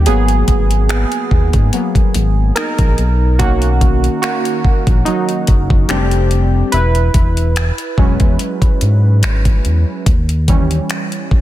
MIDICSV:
0, 0, Header, 1, 4, 480
1, 0, Start_track
1, 0, Key_signature, 5, "minor"
1, 0, Tempo, 833333
1, 35, Time_signature, 4, 2, 24, 8
1, 6572, End_track
2, 0, Start_track
2, 0, Title_t, "Synth keys"
2, 0, Program_c, 0, 88
2, 0, Control_c, 0, 64, 127
2, 38, Note_on_c, 0, 68, 101
2, 40, Note_on_c, 0, 54, 58
2, 43, Control_c, 0, 64, 0
2, 45, Note_on_c, 0, 58, 52
2, 48, Note_on_c, 0, 59, 64
2, 50, Note_off_c, 0, 59, 0
2, 50, Note_on_c, 0, 59, 77
2, 154, Control_c, 0, 64, 127
2, 500, Note_off_c, 0, 59, 0
2, 507, Note_off_c, 0, 68, 0
2, 514, Note_on_c, 0, 68, 90
2, 528, Note_on_c, 0, 59, 73
2, 992, Note_off_c, 0, 54, 0
2, 996, Note_off_c, 0, 58, 0
2, 997, Note_off_c, 0, 59, 0
2, 999, Note_on_c, 0, 54, 46
2, 1003, Note_on_c, 0, 58, 45
2, 1004, Note_on_c, 0, 59, 54
2, 1214, Note_off_c, 0, 54, 0
2, 1216, Note_off_c, 0, 58, 0
2, 1217, Note_off_c, 0, 59, 0
2, 1452, Note_off_c, 0, 68, 0
2, 1472, Note_on_c, 0, 70, 95
2, 1484, Note_on_c, 0, 63, 74
2, 1723, Control_c, 0, 64, 0
2, 1838, Control_c, 0, 64, 127
2, 1937, Note_off_c, 0, 63, 0
2, 1953, Note_on_c, 0, 66, 100
2, 1956, Note_on_c, 0, 51, 57
2, 1958, Note_on_c, 0, 58, 51
2, 1962, Note_on_c, 0, 61, 60
2, 1963, Note_off_c, 0, 58, 0
2, 1963, Note_on_c, 0, 58, 78
2, 1968, Note_off_c, 0, 70, 0
2, 2416, Note_off_c, 0, 58, 0
2, 2424, Note_off_c, 0, 66, 0
2, 2431, Note_on_c, 0, 66, 96
2, 2443, Note_on_c, 0, 58, 72
2, 2890, Note_off_c, 0, 66, 0
2, 2896, Note_off_c, 0, 58, 0
2, 2911, Note_on_c, 0, 63, 89
2, 2922, Note_on_c, 0, 54, 71
2, 3373, Note_off_c, 0, 51, 0
2, 3376, Note_off_c, 0, 54, 0
2, 3376, Note_off_c, 0, 61, 0
2, 3392, Note_on_c, 0, 67, 93
2, 3396, Note_on_c, 0, 55, 53
2, 3398, Note_on_c, 0, 57, 53
2, 3400, Note_on_c, 0, 62, 60
2, 3402, Note_on_c, 0, 60, 73
2, 3403, Control_c, 0, 64, 0
2, 3407, Note_off_c, 0, 63, 0
2, 3515, Control_c, 0, 64, 127
2, 3851, Note_off_c, 0, 67, 0
2, 3853, Note_off_c, 0, 55, 0
2, 3854, Note_off_c, 0, 57, 0
2, 3855, Note_off_c, 0, 62, 0
2, 3856, Note_off_c, 0, 60, 0
2, 3871, Note_on_c, 0, 71, 99
2, 3882, Control_c, 0, 64, 0
2, 3883, Note_on_c, 0, 64, 76
2, 3976, Control_c, 0, 64, 127
2, 4596, Note_on_c, 0, 54, 54
2, 4601, Note_on_c, 0, 56, 53
2, 4604, Note_on_c, 0, 61, 61
2, 4810, Note_off_c, 0, 71, 0
2, 4816, Note_off_c, 0, 64, 0
2, 5773, Note_off_c, 0, 54, 0
2, 5775, Note_off_c, 0, 56, 0
2, 5776, Note_off_c, 0, 61, 0
2, 5803, Control_c, 0, 64, 0
2, 5898, Control_c, 0, 64, 127
2, 6039, Note_on_c, 0, 52, 55
2, 6042, Note_on_c, 0, 55, 53
2, 6047, Note_on_c, 0, 61, 59
2, 6572, Note_off_c, 0, 52, 0
2, 6572, Note_off_c, 0, 55, 0
2, 6572, Note_off_c, 0, 61, 0
2, 6572, End_track
3, 0, Start_track
3, 0, Title_t, "Analog synth bass"
3, 0, Program_c, 1, 38
3, 39, Note_on_c, 1, 32, 104
3, 250, Note_off_c, 1, 32, 0
3, 278, Note_on_c, 1, 32, 96
3, 604, Note_off_c, 1, 32, 0
3, 757, Note_on_c, 1, 39, 91
3, 871, Note_off_c, 1, 39, 0
3, 887, Note_on_c, 1, 44, 96
3, 984, Note_off_c, 1, 44, 0
3, 1240, Note_on_c, 1, 32, 91
3, 1450, Note_off_c, 1, 32, 0
3, 1607, Note_on_c, 1, 34, 86
3, 1704, Note_off_c, 1, 34, 0
3, 1718, Note_on_c, 1, 35, 99
3, 2354, Note_off_c, 1, 35, 0
3, 2806, Note_on_c, 1, 34, 92
3, 2903, Note_off_c, 1, 34, 0
3, 3159, Note_on_c, 1, 30, 93
3, 3370, Note_off_c, 1, 30, 0
3, 3397, Note_on_c, 1, 29, 100
3, 3821, Note_off_c, 1, 29, 0
3, 3877, Note_on_c, 1, 28, 100
3, 4089, Note_off_c, 1, 28, 0
3, 4117, Note_on_c, 1, 28, 94
3, 4443, Note_off_c, 1, 28, 0
3, 4595, Note_on_c, 1, 28, 85
3, 4710, Note_off_c, 1, 28, 0
3, 4726, Note_on_c, 1, 40, 96
3, 4823, Note_off_c, 1, 40, 0
3, 5078, Note_on_c, 1, 44, 82
3, 5319, Note_on_c, 1, 32, 88
3, 5327, Note_off_c, 1, 44, 0
3, 5530, Note_off_c, 1, 32, 0
3, 5560, Note_on_c, 1, 40, 95
3, 5673, Note_off_c, 1, 40, 0
3, 5798, Note_on_c, 1, 39, 97
3, 6221, Note_off_c, 1, 39, 0
3, 6517, Note_on_c, 1, 35, 46
3, 6568, Note_off_c, 1, 35, 0
3, 6572, End_track
4, 0, Start_track
4, 0, Title_t, "Drums"
4, 34, Note_on_c, 9, 42, 77
4, 92, Note_off_c, 9, 42, 0
4, 164, Note_on_c, 9, 42, 48
4, 222, Note_off_c, 9, 42, 0
4, 275, Note_on_c, 9, 42, 65
4, 276, Note_on_c, 9, 36, 80
4, 333, Note_off_c, 9, 42, 0
4, 334, Note_off_c, 9, 36, 0
4, 407, Note_on_c, 9, 42, 49
4, 464, Note_off_c, 9, 42, 0
4, 515, Note_on_c, 9, 42, 61
4, 520, Note_on_c, 9, 26, 105
4, 572, Note_off_c, 9, 42, 0
4, 578, Note_off_c, 9, 26, 0
4, 643, Note_on_c, 9, 42, 49
4, 701, Note_off_c, 9, 42, 0
4, 756, Note_on_c, 9, 36, 92
4, 814, Note_off_c, 9, 36, 0
4, 883, Note_on_c, 9, 42, 44
4, 885, Note_on_c, 9, 36, 96
4, 941, Note_off_c, 9, 42, 0
4, 943, Note_off_c, 9, 36, 0
4, 996, Note_on_c, 9, 42, 63
4, 1053, Note_off_c, 9, 42, 0
4, 1124, Note_on_c, 9, 36, 79
4, 1126, Note_on_c, 9, 42, 44
4, 1182, Note_off_c, 9, 36, 0
4, 1184, Note_off_c, 9, 42, 0
4, 1236, Note_on_c, 9, 42, 66
4, 1293, Note_off_c, 9, 42, 0
4, 1474, Note_on_c, 9, 42, 75
4, 1481, Note_on_c, 9, 26, 96
4, 1532, Note_off_c, 9, 42, 0
4, 1539, Note_off_c, 9, 26, 0
4, 1604, Note_on_c, 9, 42, 45
4, 1605, Note_on_c, 9, 36, 85
4, 1662, Note_off_c, 9, 42, 0
4, 1663, Note_off_c, 9, 36, 0
4, 1716, Note_on_c, 9, 42, 54
4, 1774, Note_off_c, 9, 42, 0
4, 1956, Note_on_c, 9, 36, 117
4, 1956, Note_on_c, 9, 42, 76
4, 2013, Note_off_c, 9, 42, 0
4, 2014, Note_off_c, 9, 36, 0
4, 2084, Note_on_c, 9, 42, 52
4, 2141, Note_off_c, 9, 42, 0
4, 2196, Note_on_c, 9, 36, 80
4, 2196, Note_on_c, 9, 42, 63
4, 2254, Note_off_c, 9, 36, 0
4, 2254, Note_off_c, 9, 42, 0
4, 2326, Note_on_c, 9, 42, 48
4, 2384, Note_off_c, 9, 42, 0
4, 2435, Note_on_c, 9, 42, 58
4, 2441, Note_on_c, 9, 26, 103
4, 2493, Note_off_c, 9, 42, 0
4, 2498, Note_off_c, 9, 26, 0
4, 2565, Note_on_c, 9, 42, 47
4, 2623, Note_off_c, 9, 42, 0
4, 2676, Note_on_c, 9, 36, 88
4, 2733, Note_off_c, 9, 36, 0
4, 2804, Note_on_c, 9, 42, 43
4, 2805, Note_on_c, 9, 36, 96
4, 2862, Note_off_c, 9, 36, 0
4, 2862, Note_off_c, 9, 42, 0
4, 2915, Note_on_c, 9, 42, 60
4, 2973, Note_off_c, 9, 42, 0
4, 3045, Note_on_c, 9, 42, 45
4, 3102, Note_off_c, 9, 42, 0
4, 3153, Note_on_c, 9, 42, 68
4, 3158, Note_on_c, 9, 36, 86
4, 3210, Note_off_c, 9, 42, 0
4, 3215, Note_off_c, 9, 36, 0
4, 3284, Note_on_c, 9, 36, 99
4, 3342, Note_off_c, 9, 36, 0
4, 3392, Note_on_c, 9, 42, 77
4, 3399, Note_on_c, 9, 26, 98
4, 3449, Note_off_c, 9, 42, 0
4, 3456, Note_off_c, 9, 26, 0
4, 3522, Note_on_c, 9, 42, 45
4, 3579, Note_off_c, 9, 42, 0
4, 3634, Note_on_c, 9, 42, 55
4, 3691, Note_off_c, 9, 42, 0
4, 3873, Note_on_c, 9, 42, 77
4, 3930, Note_off_c, 9, 42, 0
4, 4003, Note_on_c, 9, 42, 46
4, 4060, Note_off_c, 9, 42, 0
4, 4114, Note_on_c, 9, 42, 62
4, 4115, Note_on_c, 9, 36, 89
4, 4171, Note_off_c, 9, 42, 0
4, 4172, Note_off_c, 9, 36, 0
4, 4246, Note_on_c, 9, 42, 49
4, 4303, Note_off_c, 9, 42, 0
4, 4355, Note_on_c, 9, 42, 59
4, 4361, Note_on_c, 9, 26, 102
4, 4413, Note_off_c, 9, 42, 0
4, 4418, Note_off_c, 9, 26, 0
4, 4483, Note_on_c, 9, 42, 50
4, 4541, Note_off_c, 9, 42, 0
4, 4595, Note_on_c, 9, 36, 90
4, 4652, Note_off_c, 9, 36, 0
4, 4722, Note_on_c, 9, 42, 45
4, 4724, Note_on_c, 9, 36, 94
4, 4779, Note_off_c, 9, 42, 0
4, 4782, Note_off_c, 9, 36, 0
4, 4835, Note_on_c, 9, 42, 62
4, 4892, Note_off_c, 9, 42, 0
4, 4963, Note_on_c, 9, 36, 79
4, 4965, Note_on_c, 9, 42, 43
4, 5021, Note_off_c, 9, 36, 0
4, 5022, Note_off_c, 9, 42, 0
4, 5075, Note_on_c, 9, 42, 65
4, 5133, Note_off_c, 9, 42, 0
4, 5315, Note_on_c, 9, 42, 76
4, 5322, Note_on_c, 9, 26, 99
4, 5373, Note_off_c, 9, 42, 0
4, 5380, Note_off_c, 9, 26, 0
4, 5445, Note_on_c, 9, 36, 81
4, 5445, Note_on_c, 9, 42, 49
4, 5503, Note_off_c, 9, 36, 0
4, 5503, Note_off_c, 9, 42, 0
4, 5557, Note_on_c, 9, 42, 57
4, 5614, Note_off_c, 9, 42, 0
4, 5797, Note_on_c, 9, 36, 111
4, 5797, Note_on_c, 9, 42, 76
4, 5854, Note_off_c, 9, 36, 0
4, 5855, Note_off_c, 9, 42, 0
4, 5927, Note_on_c, 9, 42, 51
4, 5985, Note_off_c, 9, 42, 0
4, 6037, Note_on_c, 9, 36, 84
4, 6037, Note_on_c, 9, 42, 66
4, 6094, Note_off_c, 9, 36, 0
4, 6094, Note_off_c, 9, 42, 0
4, 6167, Note_on_c, 9, 42, 50
4, 6225, Note_off_c, 9, 42, 0
4, 6276, Note_on_c, 9, 42, 63
4, 6282, Note_on_c, 9, 26, 100
4, 6334, Note_off_c, 9, 42, 0
4, 6339, Note_off_c, 9, 26, 0
4, 6405, Note_on_c, 9, 42, 47
4, 6463, Note_off_c, 9, 42, 0
4, 6516, Note_on_c, 9, 36, 92
4, 6572, Note_off_c, 9, 36, 0
4, 6572, End_track
0, 0, End_of_file